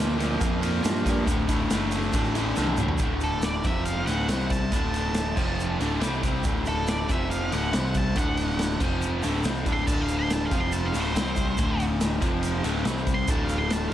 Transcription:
Already playing: picked electric bass D2, overdriven electric guitar A#2 F3 A#3
0.17 overdriven electric guitar A#2 F3 A#3, ride
0.21 shaker
0.39 picked electric bass F2, overdriven electric guitar A#2 F3 A#3, kick, ride, shaker
0.60 overdriven electric guitar A#2 F3 A#3, ride, shaker
0.82 picked electric bass G2, overdriven electric guitar A#2 F3 A#3, ride, shaker
0.86 snare
0.96 shaker
1.04 picked electric bass G2, overdriven electric guitar A#2 F3 A#3, kick, snare, ride, shaker
1.26 picked electric bass D1, overdriven electric guitar D2 A2 D3, kick, ride, shaker
1.48 overdriven electric guitar D2 A2 D3, kick, ride, shaker
1.70 picked electric bass F#1, overdriven electric guitar D2 A2 D3, snare, ride, shaker
1.91 overdriven electric guitar D2 A2 D3, ride, shaker
2.02 shaker
2.13 picked electric bass A1, overdriven electric guitar D2 A2 D3, kick, ride, shaker
2.24 shaker
2.35 overdriven electric guitar D2 A2 D3, ride, shaker
2.56 picked electric bass C2, overdriven electric guitar D2 A2 D3, snare, shaker
2.67 high tom
2.77 overdriven electric guitar D2 A2 D3, mid tom, shaker
2.88 floor tom
2.98 picked electric bass D1, overdriven electric guitar D2 A2 D3, kick, ride, shaker
3.21 lead electric guitar A4, ride, shaker
3.42 lead electric guitar D5, snare, ride, shaker
3.64 picked electric bass F1, overdriven electric guitar F2 C3 F3, lead electric guitar E5, kick, ride, shaker
3.85 lead electric guitar F5, ride, shaker
4.06 picked electric bass D1, overdriven electric guitar D2 A2 D3, lead electric guitar F#5, ride, shaker
4.29 picked electric bass C2, overdriven electric guitar C3 G3 C4, snare, ride, shaker
4.40 shaker
4.50 lead electric guitar A5, kick, ride, shaker
4.72 picked electric bass D1, overdriven electric guitar D2 A2 D3, lead electric guitar A5, kick, ride, shaker
4.94 ride, shaker
5.14 snare, ride, shaker
5.36 picked electric bass F1, overdriven electric guitar F2 C3 F3, kick, crash, shaker
5.60 shaker
5.79 picked electric bass D1, overdriven electric guitar D2 A2 D3, ride, shaker
6.00 picked electric bass C2, overdriven electric guitar C3 G3 C4, snare, ride, shaker
6.23 kick, ride, shaker
6.44 picked electric bass D1, overdriven electric guitar D2 A2 D3, kick, ride, shaker
6.65 lead electric guitar A4, ride, shaker
6.87 lead electric guitar D5, snare, ride, shaker
7.08 picked electric bass F1, overdriven electric guitar F2 C3 F3, lead electric guitar E5, kick, ride, shaker
7.30 lead electric guitar F5, ride, shaker
7.51 picked electric bass D1, overdriven electric guitar D2 A2 D3, lead electric guitar F#5, ride, shaker
7.72 picked electric bass C2, overdriven electric guitar C3 G3 C4, snare, ride, shaker
7.86 shaker
7.94 lead electric guitar A5, kick, ride, shaker
8.16 picked electric bass D1, overdriven electric guitar D2 A2 D3, lead electric guitar F#5, kick, ride, shaker
8.37 ride, shaker
8.51 shaker
8.59 snare, ride, shaker
8.80 picked electric bass F1, overdriven electric guitar F2 C3 F3, kick, crash, shaker
9.02 shaker
9.23 picked electric bass D1, overdriven electric guitar D2 A2 D3, ride, shaker
9.43 picked electric bass C2, overdriven electric guitar C3 G3 C4, snare, ride, shaker
9.55 shaker
9.65 picked electric bass D1, overdriven electric guitar D2 A2 D3, kick, ride, shaker
9.73 lead electric guitar C6
9.78 shaker
9.86 picked electric bass D1, overdriven electric guitar D2 A2 D3, lead electric guitar A5, kick, crash, shaker
10.01 lead electric guitar F5
10.08 ride, shaker
10.19 lead electric guitar C6
10.30 lead electric guitar A5, snare, ride, shaker
10.45 lead electric guitar F5
10.50 picked electric bass F1, overdriven electric guitar F2 C3 F3, kick, ride, shaker
10.60 lead electric guitar C6
10.72 lead electric guitar A5, ride, shaker
10.86 lead electric guitar F5
10.94 picked electric bass D1, overdriven electric guitar D2 A2 D3, ride, shaker
11.00 lead electric guitar C5
11.15 picked electric bass C2, overdriven electric guitar C3 G3 C4, snare, ride, shaker
11.36 kick, ride, shaker
11.57 picked electric bass D1, overdriven electric guitar D2 A2 D3, kick, ride, shaker
11.80 ride, shaker
12.01 snare, ride, shaker
12.21 picked electric bass F1, overdriven electric guitar F2 C3 F3, kick, ride, shaker
12.43 ride, shaker
12.63 picked electric bass D1, overdriven electric guitar D2 A2 D3, ride, shaker
12.85 picked electric bass C2, overdriven electric guitar C3 G3 C4, snare, ride, shaker
12.98 shaker
13.07 kick, ride, shaker
13.14 lead electric guitar C6
13.27 picked electric bass D1, overdriven electric guitar D2 A2 D3, lead electric guitar A5, kick, ride, shaker
13.45 lead electric guitar F5
13.49 ride, shaker
13.58 lead electric guitar C6
13.70 lead electric guitar A5, snare, ride, shaker
13.88 lead electric guitar F5

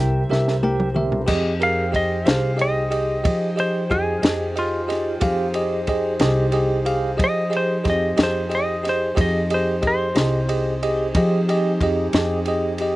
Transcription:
Already playing: upright bass C2, tonewheel organ E4 G4 A#4 C5, tine electric piano G4 A#4, electric slide guitar E5
0.00 tine electric piano G5
0.29 upright bass C2, tine electric piano G4 A#4 E5, snare
0.48 snare
0.63 tine electric piano G4 A#4 G5, high tom
0.80 mid tom
0.95 tonewheel organ A3, tine electric piano G4 A#4 E5, mid tom
1.03 tonewheel organ B3 C4
1.07 tonewheel organ D4 E4
1.12 tonewheel organ F4 G4, floor tom
1.18 tonewheel organ A4 B4
1.24 tine electric piano G4 G#4 D#5, tonewheel organ C5 D5, kick, crash
1.28 upright bass F2, tonewheel organ D#4 G#4 C5 G5
1.60 tine electric piano G4 G#4 A#4, electric slide guitar F5, ride
1.92 tine electric piano G4 G#4 D#5, electric slide guitar D#5, kick, ride
2.25 upright bass C2, tine electric piano G4 G#4 C5, electric slide guitar F5, snare, ride
2.57 tine electric piano G4 G#4 D#5, ride
2.61 electric slide guitar D#5
2.91 tine electric piano G4 G#4 D#5, ride
3.24 upright bass F3, tine electric piano G4 G#4 D#5, kick, ride
3.56 tine electric piano G4 G#4 D#5, electric slide guitar C5, ride
3.90 upright bass F2, tine electric piano G4 G#4 D#5, electric slide guitar G#4, kick, ride
4.22 upright bass F2, tine electric piano G4 G#4 D#5, snare, ride
4.56 electric slide guitar F4, tine electric piano G4 G#4 D#5, ride
4.88 tine electric piano G4 G#4 D#5, snare, ride
5.21 upright bass F2, tonewheel organ D#4 G4 G#4 C5, tine electric piano G4 G#4 F5, kick, ride
5.54 tine electric piano G4 G#4 D#5, ride
5.87 tine electric piano G4 G#4 D#5, kick, ride
6.20 upright bass C2, tine electric piano G4 G#4 D#5, snare, ride
6.52 tine electric piano G4 G#4 D#5, ride
6.85 tine electric piano G4 G#4 F5, ride
7.17 upright bass F3, tine electric piano G4 G#4 D#5, kick, ride
7.24 electric slide guitar D#5
7.50 tine electric piano G4 G#4 D#5, ride
7.57 electric slide guitar C5
7.84 upright bass F2, tine electric piano G4 G#4 D#5, kick, snare, ride
7.90 electric slide guitar D#5
8.17 upright bass F2, tine electric piano G4 G#4 D#5, snare, ride
8.23 electric slide guitar C5
8.49 tine electric piano G4 G#4 D#5, ride
8.55 electric slide guitar D#5
8.83 tine electric piano G4 G#4 D#5, snare, ride
8.89 electric slide guitar C5
9.15 upright bass F2, tonewheel organ C4 D#4 G4 G#4, tine electric piano G4 G#4 D#5, kick, ride
9.21 electric slide guitar D#5
9.50 tine electric piano G4 G#4 D#5, electric slide guitar C5, ride
9.82 tine electric piano G4 G#4 D#5, kick, ride
9.87 electric slide guitar C5
10.15 upright bass C2, tine electric piano G4 G#4 D#5, snare, ride
10.49 tine electric piano G4 G#4 D#5, ride
10.83 tine electric piano G4 G#4 D#5, ride
11.15 upright bass F3, tine electric piano G4 G#4 D#5, kick, ride
11.49 tine electric piano G4 G#4 D#5, ride
11.80 upright bass F2, tine electric piano G4 G#4 D#5, kick, ride
12.13 upright bass F2, tine electric piano G4 G#4 D#5, snare, ride
12.45 tine electric piano G4 G#4 D#5, ride
12.78 tine electric piano G4 G#4 D#5, ride

